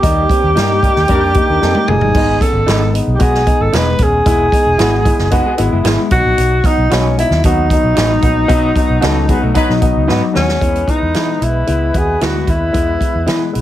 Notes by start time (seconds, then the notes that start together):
Already playing: G4
0.02 D#2 G3 A#3 D#4, kick, closed hi-hat
0.29 G3 A#3 C4, kick, closed hi-hat
0.44 D#2
0.55 G2 G3 A#3 D#4 G4 A#4, snare, closed hi-hat
0.82 G3 A#3 D#4 A#4, kick, closed hi-hat
0.96 D#2, snare
1.08 F2 G3 A#3 D4 D#4 A#4, kick, closed hi-hat
1.34 G3 A#3 D#4 G4, kick, closed hi-hat
1.49 D#2 D4 A#4
1.61 F2 G3 A#3 C4 D#4 G4 A4 A#4, snare
1.75 A#3 G4, high tom
1.88 F#1 G3 A3 A#3 D#4 F4 G#4, mid tom
2.01 G1 G3 D#4, floor tom
2.15 G#1 G#3 B3 D#4, kick, splash
2.41 G#3 B3 C#4 A4, kick, closed hi-hat
2.53 G#1
2.66 G#1 G#3 B3 D#4 G#4 B4, snare, closed hi-hat
2.93 G#3 B3 D#4, closed hi-hat
3.07 B1
3.15 G4
3.19 B1 G#3 B3 F#4 G#4, kick, closed hi-hat
3.35 snare
3.46 G#3 B3 D#4, kick, closed hi-hat
3.60 G#1 A4
3.73 E1 G#3 B3 D#4 G#4 B4, snare, closed hi-hat
3.98 D#1 G#3 B3 C#4, kick, closed hi-hat
4.03 G#4
4.26 E1 G#3 B3 E4, kick, closed hi-hat
4.52 G#3 B3 D#4, kick, closed hi-hat
4.66 E1
4.78 G#1 G#3 B3 E4 F#4 G#4 B4, snare, closed hi-hat
5.05 G#3 B3 E4, kick, closed hi-hat
5.18 F#1, snare
5.31 G#3 B3 D#4 F#4 B4, kick, closed hi-hat
5.46 B3 G#4
5.57 G#1 G#3 B3 E4 F#4, closed hi-hat
5.72 F#1 G#3 E4
5.84 G#1 G#3 B3 E4 G#4 B4, snare, closed hi-hat
6.11 B1 F#3 B3 D#4 F#4, kick, closed hi-hat
6.25 A#1
6.38 B1, closed hi-hat
6.64 F#3 B3 D#4 F#4, kick, closed hi-hat
6.78 B1
6.90 B1 F#3 B3 C#4 D#4 F#4 B4, snare, closed hi-hat
7.18 F#3 B3 D#4 E4, closed hi-hat
7.30 D#2, snare
7.44 D#2 F#3 B3 D#4 F#4, kick, closed hi-hat
7.70 F#3 B3 D#4, kick, closed hi-hat
7.84 B1
7.95 A1 F#3 B3 D#4 F#4 B4, snare, closed hi-hat
8.22 A#1 F#3 B3 D#4, kick, closed hi-hat
8.48 B1 F#3 B3 D#4, kick, closed hi-hat
8.76 F#3 B3 D#4, kick, closed hi-hat
8.90 B1
9.01 C#2 F#3 B3 C#4 D#4 F#4 A4 B4, snare, closed hi-hat
9.28 F#3 B3 D#4 F#4 G#4 B4, kick, closed hi-hat
9.42 B1 A3 F#4
9.54 F#3 B3 D#4 B4, kick, closed hi-hat
9.69 B2 F#3 D#4, snare
9.81 B1 F#3 B3 D#4, kick, closed hi-hat
9.96 C#2
10.08 G#2 F#3 B3 D#4 F#4 B4, snare
10.33 D#2 F#3 B3 C#4 F#4, snare
10.49 snare
10.60 E2 E3 G#3 B3 E4 B4, kick, closed hi-hat
10.75 closed hi-hat
10.87 G#3 B3 D#4 E4, kick, closed hi-hat
11.02 E2
11.14 E3 G#3 B3 E4 G#4 B4, snare, closed hi-hat
11.40 B1 G#3 B3 E4, closed hi-hat
11.67 C#2 G#3 B3 E4, closed hi-hat
11.94 D#2 G#3 B3 F#4 G#4, kick, closed hi-hat
12.20 D2 G#3 B3 E4 F#4 G#4 B4, snare, closed hi-hat
12.47 D#2 G#3 B3 E4, kick, closed hi-hat
12.72 E2 G#3 B3 E4, kick, closed hi-hat
12.99 G#3 B3 E4, kick, closed hi-hat
13.15 E2
13.26 E3 G#3 B3 E4 G#4 B4, snare, closed hi-hat
13.53 B1 G#3 B3 E4, closed hi-hat